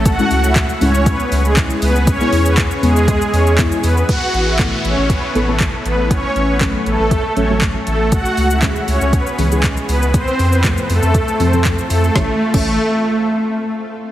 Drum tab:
CC |----------------|----------------|----------------|----------------|
HH |x-o-x-o-x-o-x-o-|x-o-x-o-x-o-x-o-|x-x-x-x-x-x-x-x-|x-x-x-x-x-x-x-x-|
SH |xxxxxxxxxxxxxxxx|xxxxxxxxxxxxxxxx|----------------|----------------|
CP |----x-------x---|----x-------x---|----x-------x---|----x-------x---|
SD |----------------|----------------|----------------|----------------|
BD |o---o---o---o---|o---o---o---o---|o---o---o---o---|o---o---o---o---|

CC |----------------|----------------|---x------------|
HH |x-o-x-o-x-o-x-o-|x-o-x-o-x-o-x-o-|----------------|
SH |xxxxxxxxxxxxxxxx|xxxxxxxxxxxxxxxx|----------------|
CP |----x-------x---|----x-------x---|----------------|
SD |----------------|----------------|o---------------|
BD |o---o---o---o---|o---o---o---o---|o--o------------|